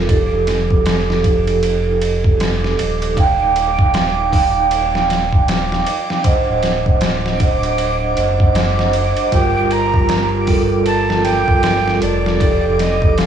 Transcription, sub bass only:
Already playing: F1
0.32 F1
2.79 D#1
3.40 D#1
6.48 D1
8.17 F#1
9.32 G1
11.48 G1
12.02 F1
12.63 F1

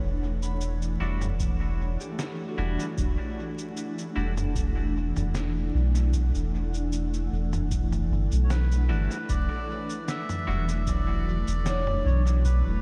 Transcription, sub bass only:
0.03 E1
1.00 E1
2.58 E1
2.98 E1
4.16 E1
5.16 E1
5.74 B1
6.35 E1
7.32 E1
8.11 G1
8.32 B1
8.90 G1
9.29 E1
10.48 E1
11.48 E1
12.05 B1
12.66 E1

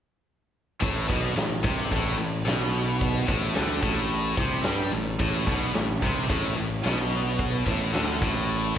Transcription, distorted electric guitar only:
0.81 A2
1.08 B2
1.36 A2
1.63 C3
1.92 A2
2.18 A2
2.45 B2
3.27 A2
3.55 D3
3.82 A2
4.37 C3
4.65 G3
4.92 A2
5.19 A2
5.48 B2
5.74 A2
6.03 C3
6.29 A2
6.57 A2
6.84 B2
7.66 A2
7.93 D3
8.22 A2

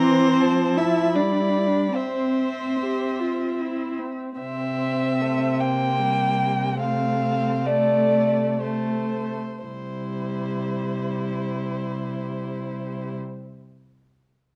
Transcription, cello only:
Already playing: C4
0.77 E4
1.15 D4
1.23 E4
1.32 D4
1.41 E4
1.49 D4
1.58 E4
1.67 D4
1.96 C4
4.41 C3
9.65 C3

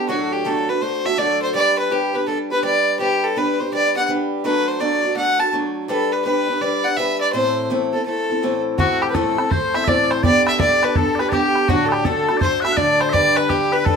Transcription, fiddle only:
0.09 F#4
0.33 G4
0.46 A4
0.69 B4
0.82 C5
1.06 E5
1.18 D5
1.42 C5
1.55 D5
1.79 B4
1.92 G4
2.15 B4
2.28 A4
2.52 B4
2.65 D5
3.00 G4
3.24 A4
3.38 B4
3.60 C5
3.74 D5
3.97 F#5
4.45 B4
4.68 C5
4.80 D5
5.17 F#5
5.40 A5
5.89 A4
6.12 B4
6.25 B4
6.62 D5
6.84 F#5
6.97 E5
7.21 D5
7.33 C5
7.93 A4
8.06 A4
8.78 F#4
9.02 G4
9.10 B4
9.14 A4
9.50 C5
9.75 E5
9.88 D5
10.11 C5
10.24 D5
10.48 E5
10.61 D5
10.84 B4
10.96 A4
11.20 B4
11.32 G4
11.68 F#4
11.86 A4
11.92 G4
12.04 A4
12.41 C5
12.63 E5
12.76 D5
13.01 C5
13.14 D5
13.37 B4
13.50 G4
13.73 B4
13.86 A4

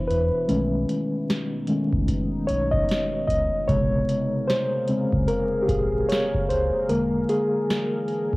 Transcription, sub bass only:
0.10 E2
0.50 B1
1.93 C#2
2.50 B1
3.28 C#2
3.69 A#1
5.13 C#2
5.69 A#1
6.50 C#2
6.90 E1

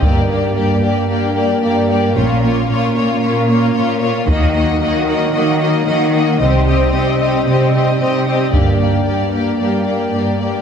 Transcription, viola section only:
0.02 A#3
0.27 A#3
0.53 A#3
0.82 A#3
1.09 A#3
1.35 A#3
1.63 A#3
1.89 A#3
2.17 A#3
2.43 A#3
2.69 A#3
2.95 A#3
3.23 A#3
3.51 A#3
3.77 A#3
4.02 A#3
4.28 A#3
4.55 A#3
4.80 A#3
5.08 A#3
5.36 A#3
5.62 A#3
5.87 A#3
6.15 A#3
6.42 C4
6.68 C4
6.95 C4
7.21 C4
7.49 C4
7.75 C4
8.00 C4
8.28 C4
8.52 A#3
8.78 A#3
9.06 A#3
9.33 A#3
9.59 A#3
9.85 A#3
10.11 A#3
10.39 A#3

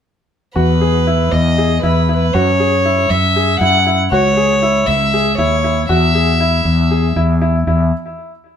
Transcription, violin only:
0.56 B4
1.31 D#5
1.83 B4
2.17 B4
2.34 C#5
3.10 E5
3.60 F#5
4.11 C#5
4.87 E5
5.38 C#5
5.89 E5

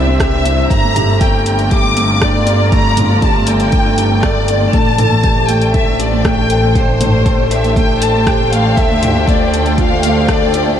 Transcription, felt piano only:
Already playing: C4 E4 G4
0.07 C4
0.20 G4
0.33 C4
0.45 C4
0.70 D4
0.83 A3
0.96 G4
1.09 A3
1.21 A3
1.47 D4
1.58 A3
1.71 G4
1.84 A3
1.96 A3
2.21 D4
2.34 A3
2.47 G4
2.59 A3
2.72 A3
2.97 D4
3.09 A3
3.22 G4
3.35 A3
3.48 A3
3.73 D4
3.86 A3
3.98 G4
4.10 A3
4.23 A3
4.48 D4
4.61 A3
4.73 A3
4.98 A4
5.11 A3
5.24 G4
5.36 A3
5.49 A3
5.74 A4
5.87 A3
5.99 G4
6.12 A3
6.24 A3
6.50 A4
6.62 A3
6.75 G4
6.88 A3
7.00 A3
7.25 A4
7.38 A3
7.51 G4
7.64 A3
7.76 A3
8.02 A4
8.14 A3
8.27 G4
8.40 A3
8.52 A3
8.78 A4
8.90 A3
9.02 F4
9.15 A3
9.28 A3
9.53 A4
9.66 A3
9.78 F4
9.92 A3
10.04 A3
10.29 A4
10.42 A3
10.54 F4
10.67 A3

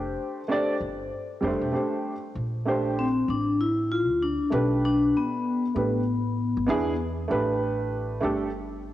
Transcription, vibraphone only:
Already playing: C5
2.99 C4
3.30 D4
3.61 E4
3.92 F4
4.23 D4
4.85 D4
5.17 B3

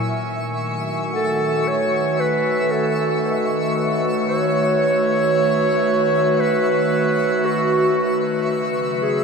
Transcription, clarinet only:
1.15 A4
1.68 C#5
2.20 B4
2.72 A4
4.28 C#5
6.40 B4
7.46 F#4
9.02 G#4

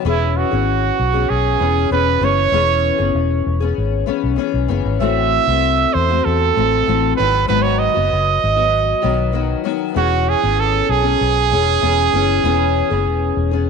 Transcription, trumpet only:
0.06 E4
0.37 F#4
1.29 G#4
1.92 B4
2.24 C#5
5.01 E5
5.93 C5
6.25 A4
7.16 B4
7.48 B4
7.62 C#5
7.79 D#5
9.98 F#4
10.29 G#4
10.60 A4
10.90 G#4

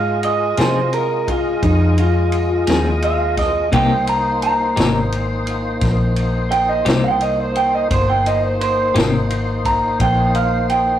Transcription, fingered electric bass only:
Already playing: G#2
0.58 C3
1.63 F2
2.68 D#2
3.73 C2
4.77 G#1
5.82 A#1
6.86 C2
7.91 G1
8.95 G#1
10.00 A#1

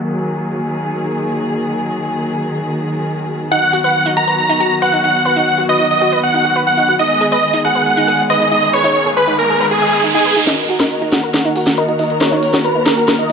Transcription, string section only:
Already playing: D#3 F#3 A#3
0.04 G#4
3.52 F#3 B3 F#4
7.00 D#3 G#3 G#4
10.47 D#3 A#3 F#4 A#4

